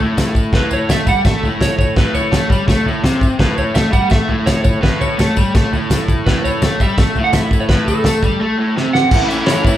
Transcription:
Already playing: C#5
0.00 A2, floor tom
0.17 snare, floor tom, tambourine
0.35 kick, floor tom, tambourine
0.53 A2 B4, kick, snare, floor tom
0.71 C#5, floor tom, tambourine
0.89 A3 E5, snare, floor tom, tambourine
1.07 G3 F#5, kick, floor tom, tambourine
1.25 A3 E5, kick, snare, floor tom, tambourine
1.43 A2, floor tom, tambourine
1.61 C#5, snare, floor tom, tambourine
1.79 C#5, kick, floor tom, tambourine
1.96 A2 B4, kick, snare, floor tom, tambourine
2.14 C#5, floor tom, tambourine
2.32 A3, snare, floor tom, tambourine
2.50 G3, kick, floor tom, tambourine
2.68 A3, kick, snare, floor tom, tambourine
2.86 A2, floor tom, tambourine
3.04 C3, snare, floor tom, tambourine
3.21 kick, floor tom, tambourine
3.39 A2 B4, kick, snare, floor tom
3.58 C#5, floor tom, tambourine
3.75 A3 E5, snare, floor tom, tambourine
3.92 G3 F#5, kick, floor tom, tambourine
4.10 A3 E5, kick, snare, floor tom, tambourine
4.28 A2, floor tom
4.46 C#5, snare, floor tom, tambourine
4.64 C#5, kick, floor tom, tambourine
4.82 A2 B4, kick, snare, floor tom
5.01 C#5, floor tom, tambourine
5.18 A3, snare, floor tom, tambourine
5.37 G3, kick, floor tom, tambourine
5.55 A3, kick, snare, floor tom, tambourine
5.72 A2, floor tom, tambourine
5.90 snare, floor tom, tambourine
6.08 kick, floor tom, tambourine
6.26 A2 B4, kick, snare, floor tom
6.44 C#5, floor tom, tambourine
6.62 A3, snare, floor tom, tambourine
6.80 G3 E5, kick, floor tom, tambourine
6.98 A3, kick, snare, floor tom, tambourine
7.15 A2, floor tom, tambourine
7.24 F#5
7.33 E5, snare, floor tom, tambourine
7.51 kick, floor tom, tambourine
7.60 C#5
7.69 A2 B4, kick, snare, floor tom
7.87 A4, floor tom, tambourine
8.04 A3, snare, floor tom, tambourine
8.23 G3, kick, floor tom, tambourine
8.41 A3
8.58 A2
8.77 C3, snare
8.93 F#5, snare
9.11 A2 E3 A3 C#4 E4, kick, crash, tambourine
9.28 C#4 E4 E5, tambourine
9.34 A3
9.46 E3 A3 C#4 C#5, snare, tambourine, crash
9.50 E4
9.65 A3 C#4 E4, kick, tambourine

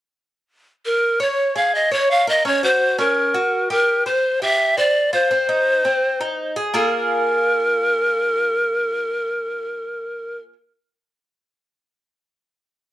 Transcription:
0.85 A#4
1.20 C#5
1.56 G#4 F5
1.75 D#5
1.91 C#5
2.11 F5
2.27 A#4 D#5
2.45 C#4 C#5
2.63 F#4 C5
2.99 C#4 A#4
3.34 F#4
3.70 G4 A#4
4.06 C5
4.42 G4 E5
4.77 C5 D5
5.13 F4 C5
5.31 C4
5.49 D#4
5.85 C4
6.21 D#4
6.56 G#4
6.74 A#3 F4 G#4 A4
6.85 A#4

